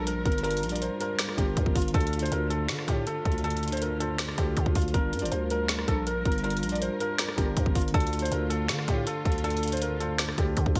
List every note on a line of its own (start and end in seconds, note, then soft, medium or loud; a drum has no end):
0.00 0.24 A#1 loud
0.00 0.43 G3 medium
0.00 1.91 G3 medium
0.00 0.44 D4 medium
0.00 0.45 F4 medium
0.00 7.90 F4 medium
0.00 0.46 A#4 loud
0.00 1.91 A#4 medium
0.00 1.02 C5 medium
0.07 0.21 A#4 medium
0.07 closed hi-hat medium
0.26 0.65 G1 loud
0.26 0.40 A#4 medium
0.26 kick loud
0.26 closed hi-hat soft
0.32 closed hi-hat medium
0.38 closed hi-hat medium
0.43 0.61 G3 loud
0.43 0.62 D4 medium
0.43 0.62 F4 loud
0.43 0.70 A#4 loud
0.43 0.63 A#4 loud
0.43 closed hi-hat medium
0.51 closed hi-hat medium
0.57 closed hi-hat medium
0.63 0.90 A#1 loud
0.63 closed hi-hat medium
0.69 0.89 G3 medium
0.69 0.90 D4 medium
0.69 0.90 F4 medium
0.69 0.79 D5 medium
0.69 closed hi-hat medium
0.74 0.91 A#4 medium
0.74 closed hi-hat medium
0.82 0.96 C5 medium
0.82 closed hi-hat medium
0.99 1.24 G3 medium
0.99 1.24 D4 medium
0.99 1.25 F4 medium
0.99 1.15 A#4 medium
0.99 1.25 C5 medium
0.99 closed hi-hat medium
1.19 finger snap medium
1.19 snare loud
1.19 closed hi-hat medium
1.29 cross-stick medium
1.36 1.56 G1 loud
1.36 1.73 G3 medium
1.36 1.73 D4 medium
1.36 1.74 F4 medium
1.36 1.73 G4 medium
1.36 1.74 A#4 medium
1.36 kick medium
1.36 closed hi-hat medium
1.57 1.66 G2 loud
1.57 kick loud
1.57 closed hi-hat medium
1.66 1.75 G1 loud
1.66 kick medium
1.76 1.94 G1 loud
1.76 1.90 F4 medium
1.76 kick loud
1.76 closed hi-hat soft
1.76 open hi-hat medium
1.82 closed hi-hat soft
1.88 closed hi-hat medium
1.93 2.30 D2 loud
1.93 2.11 D3 loud
1.93 4.91 D3 medium
1.93 4.91 A3 medium
1.93 2.12 D4 loud
1.93 2.12 F4 medium
1.93 2.21 A4 loud
1.93 2.13 A4 loud
1.93 kick loud
1.93 closed hi-hat medium
2.01 closed hi-hat medium
2.07 closed hi-hat medium
2.13 closed hi-hat medium
2.19 2.39 D3 medium
2.19 2.40 D4 medium
2.19 2.40 F4 medium
2.19 2.30 C5 medium
2.19 closed hi-hat medium
2.24 2.41 C5 medium
2.24 closed hi-hat medium
2.32 2.71 D2 loud
2.32 2.46 A#4 medium
2.32 closed hi-hat medium
2.49 2.97 D3 medium
2.49 2.98 D4 medium
2.49 2.98 F4 medium
2.49 2.64 A4 medium
2.49 2.99 A4 medium
2.49 closed hi-hat medium
2.69 2.87 D3 loud
2.69 finger snap medium
2.69 snare loud
2.69 closed hi-hat medium
2.79 cross-stick medium
2.88 3.06 A2 loud
2.88 3.02 G4 medium
2.88 kick loud
2.88 closed hi-hat medium
3.07 3.21 A4 medium
3.07 closed hi-hat medium
3.25 4.34 D2 loud
3.25 3.39 A4 medium
3.25 kick loud
3.25 closed hi-hat soft
3.32 closed hi-hat medium
3.38 closed hi-hat medium
3.43 3.61 D3 loud
3.43 3.62 D4 medium
3.43 3.62 F4 medium
3.43 3.71 A4 loud
3.43 3.63 A4 loud
3.43 closed hi-hat medium
3.50 closed hi-hat medium
3.57 closed hi-hat medium
3.63 closed hi-hat medium
3.68 3.89 D3 medium
3.68 closed hi-hat medium
3.72 3.90 D4 medium
3.72 3.90 F4 medium
3.72 3.80 C5 medium
3.72 3.91 C5 medium
3.72 closed hi-hat medium
3.77 closed hi-hat medium
3.82 3.96 A#4 medium
3.82 closed hi-hat medium
3.99 4.23 D3 medium
3.99 4.24 D4 medium
3.99 4.24 F4 medium
3.99 4.15 A4 medium
3.99 4.25 C5 medium
3.99 closed hi-hat medium
4.18 finger snap medium
4.18 snare loud
4.18 closed hi-hat medium
4.29 cross-stick loud
4.36 4.56 D2 loud
4.36 4.73 D3 medium
4.36 4.73 D4 medium
4.36 4.74 F4 medium
4.36 4.73 G4 medium
4.36 4.74 A4 medium
4.36 kick loud
4.36 cross-stick medium
4.36 closed hi-hat medium
4.57 4.65 D3 loud
4.57 kick loud
4.57 closed hi-hat medium
4.66 4.75 D2 loud
4.66 kick medium
4.75 4.93 D2 loud
4.75 4.90 F4 medium
4.75 kick loud
4.75 closed hi-hat medium
4.75 open hi-hat medium
4.82 closed hi-hat medium
4.88 closed hi-hat soft
4.93 5.15 G1 loud
4.93 5.11 G3 loud
4.93 7.91 G3 medium
4.93 5.12 D4 medium
4.93 5.12 F4 medium
4.93 5.21 A#4 loud
4.93 7.91 A#4 medium
4.93 5.13 A#4 loud
4.93 kick loud
4.93 closed hi-hat medium
5.13 5.24 G2 loud
5.13 closed hi-hat medium
5.19 5.31 G1 loud
5.19 5.39 G3 medium
5.19 5.40 D4 medium
5.19 5.40 F4 medium
5.19 5.29 D5 medium
5.19 closed hi-hat medium
5.24 5.41 C5 medium
5.24 closed hi-hat medium
5.31 5.86 D2 loud
5.31 5.46 C5 medium
5.31 closed hi-hat medium
5.50 5.98 G3 medium
5.50 5.98 D4 medium
5.50 5.99 F4 medium
5.50 5.65 A#4 medium
5.50 5.99 A#4 medium
5.50 closed hi-hat medium
5.68 finger snap medium
5.68 snare loud
5.68 closed hi-hat medium
5.79 cross-stick loud
5.88 6.24 A#1 loud
5.88 6.02 A4 medium
5.88 kick loud
5.88 closed hi-hat medium
6.07 6.21 A#4 medium
6.07 closed hi-hat medium
6.25 6.64 G1 loud
6.25 6.40 A#4 medium
6.25 kick loud
6.25 closed hi-hat soft
6.32 closed hi-hat medium
6.38 closed hi-hat medium
6.43 6.61 G3 loud
6.43 6.62 D4 medium
6.43 6.62 F4 loud
6.43 6.70 A#4 loud
6.43 6.63 A#4 loud
6.43 closed hi-hat medium
6.50 closed hi-hat medium
6.57 closed hi-hat medium
6.63 6.90 A#1 loud
6.63 closed hi-hat medium
6.69 6.89 G3 medium
6.69 6.90 D4 medium
6.69 6.90 F4 medium
6.69 6.79 D5 medium
6.69 closed hi-hat medium
6.74 6.91 A#4 medium
6.74 closed hi-hat medium
6.82 6.96 C5 medium
6.82 closed hi-hat medium
6.99 7.24 G3 medium
6.99 7.24 D4 medium
6.99 7.25 F4 medium
6.99 7.15 A#4 medium
6.99 7.25 C5 medium
6.99 closed hi-hat medium
7.18 finger snap medium
7.18 snare loud
7.18 closed hi-hat medium
7.29 cross-stick medium
7.36 7.56 G1 loud
7.36 7.73 G3 medium
7.36 7.73 D4 medium
7.36 7.74 F4 medium
7.36 7.73 G4 medium
7.36 7.74 A#4 medium
7.36 kick loud
7.36 closed hi-hat medium
7.57 7.66 G2 loud
7.57 kick loud
7.57 closed hi-hat medium
7.66 7.75 G1 loud
7.66 kick loud
7.75 7.93 G1 loud
7.75 7.90 F4 medium
7.75 kick loud
7.75 closed hi-hat soft
7.75 open hi-hat medium
7.82 closed hi-hat medium
7.88 closed hi-hat medium
7.93 8.30 D2 loud
7.93 8.11 D3 loud
7.93 10.80 D3 medium
7.93 10.80 A3 medium
7.93 8.12 D4 loud
7.93 10.80 F4 medium
7.93 8.12 F4 medium
7.93 8.21 A4 loud
7.93 8.13 A4 loud
7.93 kick loud
7.93 closed hi-hat medium
8.00 closed hi-hat medium
8.07 closed hi-hat medium
8.13 closed hi-hat medium
8.19 8.39 D3 medium
8.19 8.40 D4 medium
8.19 8.40 F4 medium
8.19 8.29 C5 medium
8.19 closed hi-hat medium
8.24 8.41 C5 medium
8.24 closed hi-hat medium
8.32 8.71 D2 loud
8.32 8.46 A#4 medium
8.32 closed hi-hat medium
8.49 8.97 D3 medium
8.49 8.98 D4 medium
8.49 8.98 F4 medium
8.49 8.64 A4 medium
8.49 8.99 A4 medium
8.49 closed hi-hat medium
8.69 8.87 D3 loud
8.69 finger snap medium
8.69 snare loud
8.69 closed hi-hat medium
8.79 cross-stick loud
8.88 9.06 A2 loud
8.88 9.02 G4 medium
8.88 kick loud
8.88 closed hi-hat medium
9.07 9.21 A4 medium
9.07 closed hi-hat medium
9.25 10.34 D2 loud
9.25 9.39 A4 medium
9.25 kick loud
9.25 closed hi-hat soft
9.32 closed hi-hat medium
9.38 closed hi-hat medium
9.43 9.61 D3 medium
9.43 9.62 D4 loud
9.43 9.62 F4 medium
9.43 9.71 A4 loud
9.43 9.63 A4 loud
9.43 closed hi-hat medium
9.50 closed hi-hat medium
9.57 closed hi-hat medium
9.63 closed hi-hat medium
9.68 9.89 D3 medium
9.68 closed hi-hat medium
9.72 9.90 D4 medium
9.72 9.90 F4 medium
9.72 9.80 C5 medium
9.72 9.91 C5 medium
9.72 closed hi-hat medium
9.77 closed hi-hat medium
9.82 9.96 A#4 medium
9.82 closed hi-hat medium
9.99 10.23 D3 medium
9.99 10.24 D4 medium
9.99 10.24 F4 medium
9.99 10.15 A4 medium
9.99 10.25 C5 medium
9.99 closed hi-hat medium
10.18 finger snap loud
10.18 snare loud
10.18 closed hi-hat medium
10.29 cross-stick loud
10.36 10.56 D2 loud
10.36 10.73 D3 medium
10.36 10.73 D4 medium
10.36 10.74 F4 medium
10.36 10.73 G4 medium
10.36 10.74 A4 medium
10.36 kick medium
10.36 cross-stick medium
10.36 closed hi-hat medium
10.57 10.66 D3 loud
10.57 kick loud
10.57 closed hi-hat medium
10.66 10.75 D2 loud
10.66 kick medium
10.75 10.80 D2 loud
10.75 10.80 F4 medium
10.75 kick loud
10.75 closed hi-hat medium
10.75 open hi-hat medium